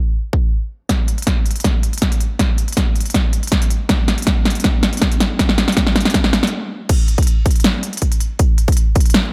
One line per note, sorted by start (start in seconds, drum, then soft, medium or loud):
0.33 kick loud
0.89 kick medium
0.89 snare soft
0.89 closed hi-hat medium
1.08 closed hi-hat medium
1.18 closed hi-hat soft
1.22 closed hi-hat medium
1.27 kick loud
1.27 snare medium
1.27 closed hi-hat medium
1.46 closed hi-hat soft
1.51 closed hi-hat medium
1.56 closed hi-hat soft
1.60 closed hi-hat medium
1.64 kick loud
1.64 snare medium
1.64 closed hi-hat medium
1.83 closed hi-hat medium
1.93 closed hi-hat medium
1.98 closed hi-hat medium
2.02 kick loud
2.02 snare medium
2.02 closed hi-hat medium
2.12 closed hi-hat medium
2.21 closed hi-hat medium
2.39 kick loud
2.39 snare medium
2.39 closed hi-hat medium
2.58 closed hi-hat medium
2.68 closed hi-hat medium
2.72 closed hi-hat medium
2.77 kick loud
2.77 snare medium
2.77 closed hi-hat medium
2.96 closed hi-hat soft
3.00 closed hi-hat medium
3.06 closed hi-hat medium
3.10 closed hi-hat medium
3.14 kick loud
3.14 snare medium
3.14 closed hi-hat medium
3.33 closed hi-hat medium
3.43 closed hi-hat medium
3.47 closed hi-hat medium
3.52 kick medium
3.52 snare medium
3.52 closed hi-hat medium
3.62 closed hi-hat medium
3.70 closed hi-hat medium
3.89 kick loud
3.89 snare medium
3.89 closed hi-hat medium
4.08 snare medium
4.08 closed hi-hat medium
4.18 closed hi-hat soft
4.22 closed hi-hat medium
4.27 kick loud
4.27 snare medium
4.27 closed hi-hat medium
4.45 snare medium
4.45 closed hi-hat soft
4.50 closed hi-hat medium
4.55 closed hi-hat medium
4.60 closed hi-hat medium
4.64 kick loud
4.64 snare medium
4.64 closed hi-hat medium
4.83 snare medium
4.83 closed hi-hat medium
4.93 closed hi-hat medium
4.97 closed hi-hat medium
5.02 kick loud
5.02 snare medium
5.02 closed hi-hat medium
5.12 closed hi-hat medium
5.20 snare loud
5.20 closed hi-hat medium
5.39 kick loud
5.39 snare medium
5.39 closed hi-hat medium
5.49 snare medium
5.58 snare medium
5.58 closed hi-hat medium
5.68 snare medium
5.68 closed hi-hat soft
5.72 closed hi-hat medium
5.77 kick loud
5.77 snare medium
5.77 closed hi-hat medium
5.87 snare medium
5.96 snare loud
5.96 closed hi-hat soft
6.00 closed hi-hat medium
6.05 snare medium
6.05 closed hi-hat soft
6.10 closed hi-hat medium
6.14 kick loud
6.14 snare loud
6.14 closed hi-hat medium
6.24 snare medium
6.33 snare loud
6.33 closed hi-hat medium
6.43 snare medium
6.43 closed hi-hat medium
6.47 closed hi-hat medium
6.89 kick loud
6.89 closed hi-hat medium
6.89 crash loud
7.08 closed hi-hat medium
7.18 kick loud
7.18 closed hi-hat medium
7.22 closed hi-hat medium
7.27 closed hi-hat medium
7.46 kick loud
7.46 closed hi-hat medium
7.51 closed hi-hat medium
7.56 closed hi-hat medium
7.60 closed hi-hat medium
7.64 snare loud
7.64 closed hi-hat medium
7.83 closed hi-hat medium
7.93 closed hi-hat medium
7.97 closed hi-hat medium
8.02 kick medium
8.02 closed hi-hat medium
8.12 closed hi-hat medium
8.20 closed hi-hat medium
8.39 kick loud
8.39 closed hi-hat medium
8.58 closed hi-hat medium
8.68 kick loud
8.68 closed hi-hat medium
8.72 closed hi-hat medium
8.77 closed hi-hat medium
8.95 kick loud
8.95 closed hi-hat soft
9.00 closed hi-hat medium
9.06 closed hi-hat medium
9.10 closed hi-hat medium
9.14 snare loud
9.14 closed hi-hat medium